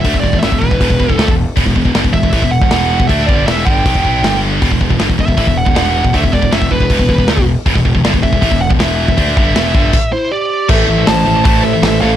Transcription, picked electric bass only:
\new Staff \with { instrumentName = "Picked electric bass" } { \clef bass \time 4/4 \key e \minor \tempo 4 = 158 d,16 e,,16 e,,16 e,,16 fis,,16 e,,16 e,,16 e,,16 e,,16 e,,16 e,,16 e,,16 d,16 e,,8 r16 | e,,16 e,,16 e,,16 e,,16 g,,16 e,,16 e,,16 e,,16 a,,16 e,,8 e,,16 e,,8. e,,16 | d,8 g,,8 e,,8 g,,8 b,,16 e,,16 b,,8 g,,4 | e,,16 e,,16 e,,16 e,,16 g,,16 e,,16 e,,16 e,,16 a,,16 e,,8 e,,16 e,,8. e,,16 |
d,16 e,,16 e,,16 e,,16 fis,,16 e,,16 e,,16 e,,16 e,,16 e,,16 e,,16 e,,16 d,16 e,,8 r16 | e,,16 e,,16 e,,16 e,,16 g,,16 e,,16 e,,16 e,,16 a,,16 e,,8 e,,16 e,,8. e,,16 | d,8 g,,8 e,,8 g,,8 r2 | \key a \minor a,,8 a,,8 a,,8 a,,8 a,,4 a,,8 a,,8 | }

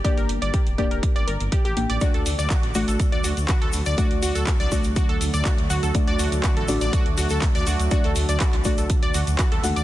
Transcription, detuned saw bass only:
\new Staff \with { instrumentName = "Detuned saw bass" } { \clef bass \time 4/4 \key d \phrygian \tempo 4 = 122 r16 g,,16 g,,16 g,,16 r16 d,,16 d,,16 d,,16 r16 g,,16 g,,16 g,,16 r16 a,,16 a,,16 a,,16 | r16 d,16 d,16 d,16 r16 a,,16 a,,16 a,,16 r16 d,16 d,16 d,16 r16 d,16 d,16 d,16 | r16 d,16 d,16 d,16 r16 c,16 c,16 c,16 r16 d,16 d,16 d,16 r16 d,16 d,16 d,16 | r16 d,16 d,16 d,16 r16 a,,16 a,,16 a,,16 r16 d,16 d,16 d,16 r16 d,16 d,16 d,16 |
r16 d,16 d,16 d,16 r16 c,16 c,16 c,16 r16 d,16 d,16 d,16 r16 ees,16 ees,16 ees,16 | }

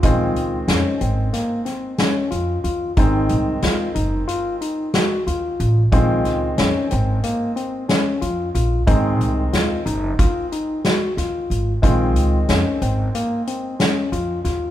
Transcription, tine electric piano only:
\new Staff \with { instrumentName = "Tine electric piano" } { \time 9/8 \key bes \minor \tempo 4. = 61 f'4 des'8 c'8 bes8 c'8 des'8 f'8 f'8 | ees'4 f'8 ees'8 f'8 ees'8 ges'8 f'4 | f'4 des'8 c'8 bes8 c'8 des'8 f'8 f'8 | ees'4 f'8 ees'8 f'8 ees'8 ges'8 f'4 |
f'4 des'8 c'8 bes8 c'8 des'8 f'8 f'8 | }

